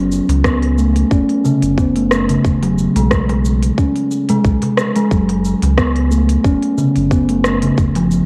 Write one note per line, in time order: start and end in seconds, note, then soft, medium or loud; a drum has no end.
0.00 0.21 F#1 medium
0.12 shaker medium
0.29 1.04 C#2 loud
0.29 open hi-hat medium
0.29 darbuka tek medium
0.29 shaker soft
0.44 0.62 B3 medium
0.44 kick loud
0.44 cross-stick medium
0.44 shaker soft
0.63 open hi-hat soft
0.78 0.88 A3 medium
0.78 shaker medium
0.96 open hi-hat soft
0.96 shaker soft
1.11 1.24 F#1 loud
1.11 1.43 C#4 medium
1.11 kick loud
1.11 shaker soft
1.29 open hi-hat soft
1.44 1.62 C#3 medium
1.44 darbuka dum medium
1.44 shaker medium
1.62 2.37 F#1 medium
1.62 open hi-hat soft
1.62 shaker soft
1.78 1.95 B3 medium
1.78 kick medium
1.78 shaker soft
1.96 2.28 A3 medium
1.96 open hi-hat soft
2.11 cross-stick medium
2.11 shaker medium
2.29 2.44 C#3 medium
2.29 open hi-hat soft
2.29 shaker soft
2.44 2.88 E1 loud
2.44 kick medium
2.44 shaker soft
2.63 2.77 F#3 medium
2.63 open hi-hat soft
2.63 darbuka tek medium
2.78 shaker medium
2.96 3.71 B1 loud
2.96 3.11 G#3 medium
2.96 open hi-hat medium
2.96 darbuka tek medium
2.96 shaker soft
3.11 kick loud
3.11 cross-stick medium
3.11 shaker soft
3.29 3.76 G#3 medium
3.29 open hi-hat soft
3.29 darbuka tek medium
3.45 shaker medium
3.62 open hi-hat soft
3.62 shaker soft
3.78 3.95 C#4 medium
3.78 kick loud
3.78 shaker soft
3.96 open hi-hat soft
4.11 darbuka ka soft
4.11 shaker medium
4.29 4.44 G#3 loud
4.29 open hi-hat medium
4.29 darbuka dum medium
4.29 shaker soft
4.44 4.57 B1 loud
4.44 kick medium
4.44 darbuka ka medium
4.44 shaker soft
4.62 open hi-hat soft
4.62 darbuka ka medium
4.62 darbuka tek medium
4.62 darbuka dum medium
4.77 cross-stick medium
4.77 shaker medium
4.96 5.10 G#3 loud
4.96 open hi-hat soft
4.96 shaker soft
5.11 5.54 F#1 medium
5.11 5.28 F#3 medium
5.11 kick medium
5.11 shaker soft
5.29 open hi-hat soft
5.29 darbuka tek medium
5.45 shaker medium
5.62 6.38 C#2 loud
5.62 open hi-hat medium
5.62 darbuka tek medium
5.62 shaker soft
5.78 5.95 B3 medium
5.78 kick loud
5.78 cross-stick medium
5.78 shaker soft
5.96 open hi-hat soft
6.11 6.22 A3 medium
6.11 shaker medium
6.29 open hi-hat medium
6.29 shaker soft
6.44 6.58 F#1 medium
6.44 6.76 C#4 medium
6.44 kick loud
6.44 shaker soft
6.63 open hi-hat soft
6.78 6.95 C#3 medium
6.78 darbuka dum medium
6.78 shaker medium
6.96 7.71 F#1 medium
6.96 open hi-hat medium
6.96 shaker soft
7.11 7.28 B3 medium
7.11 kick loud
7.11 shaker soft
7.29 7.61 A3 medium
7.29 open hi-hat soft
7.44 cross-stick medium
7.44 shaker medium
7.62 7.77 C#3 medium
7.62 open hi-hat medium
7.62 shaker soft
7.78 8.21 F1 medium
7.78 kick medium
7.78 shaker soft
7.95 8.11 F3 medium
7.95 open hi-hat soft
7.95 darbuka tek medium
7.95 shaker soft
8.11 shaker medium